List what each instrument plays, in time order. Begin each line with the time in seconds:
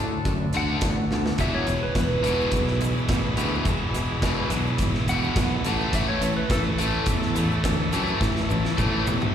Already playing: fingered electric bass A2, tonewheel organ A3 D4 F#4 A4
0.00 distorted electric guitar D3 A3
0.25 fingered electric bass F#2, distorted electric guitar D3 A3, kick, closed hi-hat
0.53 fingered electric bass D2, distorted electric guitar D3 A3 D4, closed hi-hat
0.57 electric slide guitar F#5
0.81 fingered electric bass A1, distorted electric guitar D3 A3, kick, snare, closed hi-hat
1.11 fingered electric bass D2, distorted electric guitar D3 A3, snare
1.26 snare
1.38 fingered electric bass E1, distorted electric guitar E2 B2 E3, tonewheel organ G#3 B3 E4 G#4, electric slide guitar E5, kick, closed hi-hat, shaker
1.55 electric slide guitar C#5
1.67 fingered electric bass E1, distorted electric guitar E2 B2, closed hi-hat, shaker
1.83 electric slide guitar B4
1.95 fingered electric bass E1, distorted electric guitar E2 B2, electric slide guitar B4, kick, snare, closed hi-hat, shaker
2.23 fingered electric bass E1, distorted electric guitar E2 B2 E3, closed hi-hat, shaker
2.27 distorted electric guitar E2
2.41 shaker
2.52 fingered electric bass B1, distorted electric guitar E2 B2, kick, closed hi-hat
2.56 shaker
2.67 snare
2.81 distorted electric guitar E2 B2, closed hi-hat, shaker
2.98 shaker
3.09 fingered electric bass A1, distorted electric guitar E2 B2, kick, snare, closed hi-hat, shaker
3.13 distorted electric guitar E3
3.37 fingered electric bass D2, distorted electric guitar E2 B2 E3, closed hi-hat, shaker
3.54 shaker
3.65 fingered electric bass E1, distorted electric guitar E2 B2 E3, tonewheel organ G#3 B3 E4 G#4, kick, closed hi-hat, shaker
3.94 fingered electric bass E1, distorted electric guitar E2 B2, closed hi-hat, shaker
4.22 fingered electric bass E1, distorted electric guitar E2 B2 E3, kick, snare, closed hi-hat, shaker
4.50 fingered electric bass B1, distorted electric guitar E2 B2 E3, closed hi-hat, shaker
4.67 shaker
4.78 fingered electric bass G#1, distorted electric guitar E2 B2, kick, closed hi-hat, shaker
4.94 snare
5.08 fingered electric bass E1, distorted electric guitar E2 B2 E3, electric slide guitar F#5, closed hi-hat, shaker
5.24 shaker
5.36 fingered electric bass B1, distorted electric guitar E2 B2 E3, kick, snare, closed hi-hat, shaker
5.64 fingered electric bass A1, distorted electric guitar A2 E3 A3, tonewheel organ A3 C#4 E4 A4, closed hi-hat, shaker
5.80 shaker
5.93 fingered electric bass A1, distorted electric guitar A2 E3 A3, electric slide guitar E5, kick, closed hi-hat, shaker
6.08 electric slide guitar C#5
6.21 fingered electric bass A1, distorted electric guitar A2 E3, closed hi-hat, shaker
6.37 electric slide guitar B4
6.50 fingered electric bass A1, distorted electric guitar A2 E3, electric slide guitar A4, kick, snare, closed hi-hat, shaker
6.54 distorted electric guitar A3
6.78 fingered electric bass A1, distorted electric guitar A2 E3 A3, closed hi-hat, shaker
7.06 fingered electric bass E2, distorted electric guitar A2 E3, kick, closed hi-hat, shaker
7.22 snare
7.35 distorted electric guitar A2 E3 A3, closed hi-hat, shaker
7.40 distorted electric guitar A2
7.52 shaker
7.64 fingered electric bass D2, distorted electric guitar A2 E3, kick, snare, closed hi-hat, shaker
7.92 fingered electric bass F#2, distorted electric guitar A2 E3 A3, tonewheel organ A3 C#4 E4, closed hi-hat, shaker
8.07 shaker
8.21 fingered electric bass A1, distorted electric guitar A2 E3, kick, snare, shaker
8.36 snare
8.49 fingered electric bass A1, distorted electric guitar A2 E3, shaker
8.65 snare, shaker
8.77 fingered electric bass A1, distorted electric guitar A2 E3 A3, kick, high tom, shaker
8.82 distorted electric guitar A3
9.07 fingered electric bass E2, distorted electric guitar A2 E3, high tom, shaker
9.21 mid tom, shaker